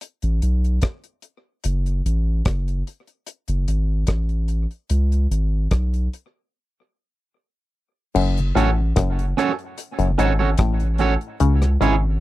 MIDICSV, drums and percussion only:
0, 0, Header, 1, 2, 480
1, 0, Start_track
1, 0, Key_signature, 3, "minor"
1, 0, Tempo, 813008
1, 970, Time_signature, 4, 2, 24, 8
1, 7203, End_track
2, 0, Start_track
2, 0, Title_t, "Drums"
2, 7, Note_on_c, 9, 42, 73
2, 66, Note_off_c, 9, 42, 0
2, 132, Note_on_c, 9, 42, 51
2, 191, Note_off_c, 9, 42, 0
2, 249, Note_on_c, 9, 42, 67
2, 308, Note_off_c, 9, 42, 0
2, 380, Note_on_c, 9, 42, 33
2, 439, Note_off_c, 9, 42, 0
2, 481, Note_on_c, 9, 42, 76
2, 489, Note_on_c, 9, 36, 91
2, 491, Note_on_c, 9, 37, 114
2, 541, Note_off_c, 9, 42, 0
2, 548, Note_off_c, 9, 36, 0
2, 550, Note_off_c, 9, 37, 0
2, 612, Note_on_c, 9, 42, 45
2, 671, Note_off_c, 9, 42, 0
2, 722, Note_on_c, 9, 42, 73
2, 781, Note_off_c, 9, 42, 0
2, 966, Note_on_c, 9, 42, 97
2, 1025, Note_off_c, 9, 42, 0
2, 1098, Note_on_c, 9, 42, 46
2, 1157, Note_off_c, 9, 42, 0
2, 1216, Note_on_c, 9, 42, 64
2, 1275, Note_off_c, 9, 42, 0
2, 1448, Note_on_c, 9, 42, 87
2, 1451, Note_on_c, 9, 36, 111
2, 1452, Note_on_c, 9, 37, 106
2, 1507, Note_off_c, 9, 42, 0
2, 1510, Note_off_c, 9, 36, 0
2, 1511, Note_off_c, 9, 37, 0
2, 1582, Note_on_c, 9, 42, 53
2, 1641, Note_off_c, 9, 42, 0
2, 1696, Note_on_c, 9, 42, 71
2, 1755, Note_off_c, 9, 42, 0
2, 1815, Note_on_c, 9, 42, 32
2, 1874, Note_off_c, 9, 42, 0
2, 1928, Note_on_c, 9, 42, 76
2, 1987, Note_off_c, 9, 42, 0
2, 2054, Note_on_c, 9, 42, 55
2, 2113, Note_off_c, 9, 42, 0
2, 2172, Note_on_c, 9, 42, 73
2, 2231, Note_off_c, 9, 42, 0
2, 2402, Note_on_c, 9, 42, 81
2, 2410, Note_on_c, 9, 36, 87
2, 2411, Note_on_c, 9, 37, 102
2, 2461, Note_off_c, 9, 42, 0
2, 2469, Note_off_c, 9, 36, 0
2, 2470, Note_off_c, 9, 37, 0
2, 2533, Note_on_c, 9, 42, 38
2, 2592, Note_off_c, 9, 42, 0
2, 2646, Note_on_c, 9, 42, 73
2, 2705, Note_off_c, 9, 42, 0
2, 2779, Note_on_c, 9, 42, 31
2, 2838, Note_off_c, 9, 42, 0
2, 2890, Note_on_c, 9, 42, 94
2, 2949, Note_off_c, 9, 42, 0
2, 3023, Note_on_c, 9, 42, 49
2, 3082, Note_off_c, 9, 42, 0
2, 3138, Note_on_c, 9, 42, 65
2, 3197, Note_off_c, 9, 42, 0
2, 3371, Note_on_c, 9, 42, 89
2, 3373, Note_on_c, 9, 36, 106
2, 3375, Note_on_c, 9, 37, 92
2, 3430, Note_off_c, 9, 42, 0
2, 3432, Note_off_c, 9, 36, 0
2, 3434, Note_off_c, 9, 37, 0
2, 3505, Note_on_c, 9, 42, 55
2, 3564, Note_off_c, 9, 42, 0
2, 3622, Note_on_c, 9, 42, 73
2, 3681, Note_off_c, 9, 42, 0
2, 4814, Note_on_c, 9, 49, 96
2, 4874, Note_off_c, 9, 49, 0
2, 4945, Note_on_c, 9, 42, 44
2, 5004, Note_off_c, 9, 42, 0
2, 5059, Note_on_c, 9, 42, 71
2, 5118, Note_off_c, 9, 42, 0
2, 5292, Note_on_c, 9, 42, 115
2, 5295, Note_on_c, 9, 36, 106
2, 5296, Note_on_c, 9, 37, 115
2, 5351, Note_off_c, 9, 42, 0
2, 5354, Note_off_c, 9, 36, 0
2, 5355, Note_off_c, 9, 37, 0
2, 5425, Note_on_c, 9, 42, 59
2, 5484, Note_off_c, 9, 42, 0
2, 5539, Note_on_c, 9, 37, 69
2, 5542, Note_on_c, 9, 42, 77
2, 5598, Note_off_c, 9, 37, 0
2, 5601, Note_off_c, 9, 42, 0
2, 5660, Note_on_c, 9, 42, 35
2, 5719, Note_off_c, 9, 42, 0
2, 5772, Note_on_c, 9, 42, 83
2, 5831, Note_off_c, 9, 42, 0
2, 5896, Note_on_c, 9, 42, 52
2, 5955, Note_off_c, 9, 42, 0
2, 6014, Note_on_c, 9, 42, 71
2, 6073, Note_off_c, 9, 42, 0
2, 6244, Note_on_c, 9, 42, 81
2, 6251, Note_on_c, 9, 36, 111
2, 6253, Note_on_c, 9, 37, 110
2, 6303, Note_off_c, 9, 42, 0
2, 6310, Note_off_c, 9, 36, 0
2, 6312, Note_off_c, 9, 37, 0
2, 6375, Note_on_c, 9, 42, 45
2, 6434, Note_off_c, 9, 42, 0
2, 6485, Note_on_c, 9, 42, 75
2, 6544, Note_off_c, 9, 42, 0
2, 6619, Note_on_c, 9, 42, 37
2, 6678, Note_off_c, 9, 42, 0
2, 6731, Note_on_c, 9, 42, 98
2, 6790, Note_off_c, 9, 42, 0
2, 6859, Note_on_c, 9, 37, 53
2, 6861, Note_on_c, 9, 42, 51
2, 6918, Note_off_c, 9, 37, 0
2, 6920, Note_off_c, 9, 42, 0
2, 6977, Note_on_c, 9, 42, 70
2, 7036, Note_off_c, 9, 42, 0
2, 7203, End_track
0, 0, End_of_file